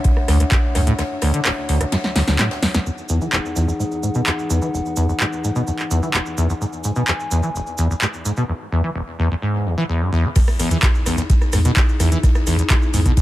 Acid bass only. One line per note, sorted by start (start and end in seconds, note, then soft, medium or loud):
0.05 0.11 D1 medium
0.28 0.38 D2 loud
0.40 0.44 D2 medium
0.52 0.56 F#2 medium
0.75 0.82 F#2 medium
0.87 0.93 A2 loud
0.99 1.03 D2 medium
1.22 1.32 D2 loud
1.34 1.40 D3 medium
1.45 1.52 D1 medium
1.69 1.79 D2 loud
1.92 1.96 F#2 medium
2.16 2.22 D2 loud
2.28 2.37 D2 loud
2.39 2.49 A2 medium
2.62 2.66 E2 medium
2.74 2.78 E2 loud
2.86 2.90 E2 medium
3.09 3.19 E2 loud
3.21 3.28 E3 medium
3.33 3.39 E1 medium
3.56 3.66 E2 loud
3.68 3.72 E2 medium
3.80 3.84 G#2 medium
4.03 4.10 G#2 medium
4.15 4.21 B2 loud
4.27 4.31 E2 medium
4.50 4.60 E2 loud
4.62 4.68 E3 medium
4.74 4.80 E1 medium
4.97 5.07 E2 loud
5.09 5.13 E2 medium
5.21 5.24 G#2 medium
5.44 5.50 G#2 medium
5.56 5.62 B2 medium
5.67 5.71 E2 medium
5.91 6.01 E2 loud
6.03 6.09 E3 medium
6.14 6.21 E1 medium
6.37 6.47 E2 loud
6.49 6.53 E2 medium
6.61 6.65 G#2 medium
6.84 6.91 G#2 medium
6.96 7.03 B2 loud
7.08 7.12 E2 medium
7.31 7.41 E2 loud
7.43 7.50 E3 medium
7.55 7.61 E1 medium
7.78 7.88 E2 loud
7.90 7.94 E2 medium
8.02 8.06 G#2 medium
8.25 8.32 G#2 medium
8.37 8.43 B2 medium
8.48 8.52 E2 medium
8.72 8.82 E2 loud
8.84 8.90 E3 medium
8.95 9.02 E1 medium
9.19 9.29 E2 loud
9.31 9.35 E2 medium
9.42 9.67 G#2 medium
9.66 9.75 E2 loud
9.78 9.84 E3 medium
9.89 10.02 E2 medium
10.01 10.10 F#2 medium
10.12 10.26 E2 loud
10.24 10.28 E3 medium
10.36 10.40 E2 medium
10.59 10.69 E2 loud
10.71 10.78 E3 medium
10.83 10.89 E1 medium
11.06 11.16 E2 loud
11.18 11.22 E2 medium
11.30 11.34 G#2 medium
11.53 11.60 G#2 medium
11.65 11.71 B2 loud
11.77 11.81 E2 medium
12.00 12.10 E2 loud
12.12 12.18 E3 medium
12.23 12.30 E1 medium
12.47 12.57 E2 loud
12.59 12.63 E2 medium
12.70 12.74 G#2 medium
12.94 13.00 G#2 medium
13.06 13.12 B2 loud
13.17 13.21 E2 medium